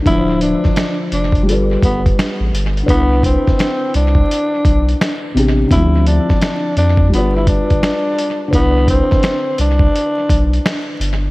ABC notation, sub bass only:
X:1
M:4/4
L:1/16
Q:"Swing 16ths" 1/4=85
K:C
V:1 name="Sub bass" clef=bass
D,,,3 z3 F,,,2 G,,,2 G,,,2 z A,,, G,,,2 | C,,3 z3 C,,2 z2 B,,,2 z2 A,,,2 | D,,3 z3 F,,2 G,,,3 G,,, z4 | C,,3 z3 C,,2 z2 B,,,2 z2 G,,,2 |]